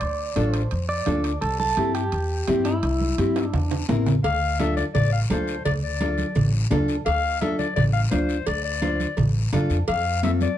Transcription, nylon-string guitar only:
0.36 0.61 D4 medium
0.36 0.61 F4 medium
0.36 0.61 A4 medium
1.06 1.31 D4 medium
1.06 1.31 F4 medium
1.06 1.32 A4 medium
1.77 2.02 C4 medium
1.77 2.02 E4 medium
1.77 2.02 G4 medium
2.48 2.72 C4 medium
2.48 2.73 E4 medium
2.48 2.73 G4 medium
3.18 3.43 C4 medium
3.18 3.43 E4 medium
3.18 3.43 G4 medium
3.89 4.13 C4 medium
3.89 4.14 E4 medium
3.89 4.14 A#4 medium
4.59 4.84 D4 medium
4.59 4.84 F4 medium
4.59 4.85 A4 medium
5.30 5.55 D4 medium
5.30 5.55 F4 medium
5.30 5.55 A4 medium
6.00 6.25 D4 medium
6.00 6.25 F4 medium
6.00 6.26 A4 medium
6.70 6.95 D4 medium
6.70 6.96 F4 medium
6.70 6.96 A4 loud
7.41 7.66 D4 medium
7.41 7.66 F4 medium
7.41 7.66 A4 medium
8.11 8.36 D4 medium
8.11 8.36 F4 medium
8.11 8.37 C5 medium
8.82 9.07 D4 medium
8.82 9.07 F4 medium
8.82 9.07 C5 medium
9.52 9.77 D4 medium
9.52 9.77 F4 medium
9.52 9.78 A4 loud
10.23 10.48 C4 medium
10.23 10.48 F4 medium
10.23 10.48 A4 medium

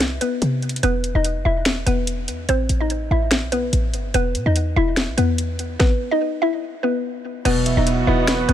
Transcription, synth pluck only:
0.00 0.19 E4 medium
0.00 0.19 E5 medium
0.21 0.80 B3 medium
0.21 0.79 B4 medium
0.83 1.13 B3 medium
0.83 1.13 B4 loud
1.15 1.44 D#4 medium
1.15 1.44 D#5 medium
1.45 1.85 E4 medium
1.45 1.84 E5 medium
1.86 2.45 B3 medium
1.86 2.45 B4 medium
2.49 2.79 C4 medium
2.49 2.79 C5 loud
2.80 3.09 D#4 medium
2.80 3.09 D#5 medium
3.11 3.50 E4 medium
3.11 3.50 E5 medium
3.52 4.11 B3 medium
3.52 4.10 B4 medium
4.14 4.45 B3 medium
4.14 4.44 B4 loud
4.46 4.75 D#4 medium
4.46 4.75 D#5 medium
4.76 5.16 E4 medium
4.76 5.15 E5 medium
5.17 5.76 B3 medium
5.17 5.76 B4 medium
5.79 6.10 B3 medium
5.79 6.09 B4 loud
6.11 6.40 D#4 medium
6.11 6.40 D#5 medium
6.42 6.81 E4 medium
6.42 6.81 E5 medium
6.83 7.42 B3 medium
6.83 7.42 B4 medium
7.45 7.75 B3 medium
7.45 7.75 B4 loud
7.77 8.06 D#4 medium
7.77 8.06 D#5 medium
8.07 8.47 E4 medium
8.07 8.46 E5 medium
8.48 8.53 B3 medium
8.48 8.53 B4 medium

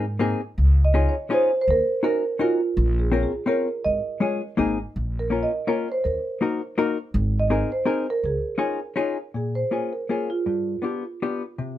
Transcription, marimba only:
0.00 0.17 A#4 medium
0.85 1.09 D#5 medium
1.09 1.33 C#5 medium
1.33 1.60 C5 medium
1.61 1.68 C5 medium
1.71 2.03 A#4 medium
2.04 2.38 A#4 medium
2.41 2.66 F4 medium
2.99 3.22 G#4 medium
3.23 3.49 G#4 medium
3.48 3.86 A#4 medium
3.85 4.73 D#5 medium
5.19 5.45 A#4 medium
5.43 5.69 D#5 medium
5.68 5.93 C#5 medium
5.92 6.05 C5 medium
6.04 6.56 A#4 medium
7.39 7.62 D#5 medium
7.72 8.08 C5 medium
8.10 8.26 A#4 medium
8.26 8.94 G#4 medium
9.36 9.56 G#4 medium
9.55 9.94 C5 medium
9.93 10.11 A#4 medium
10.10 10.30 G#4 medium
10.30 10.46 F4 medium
10.47 11.18 F4 soft

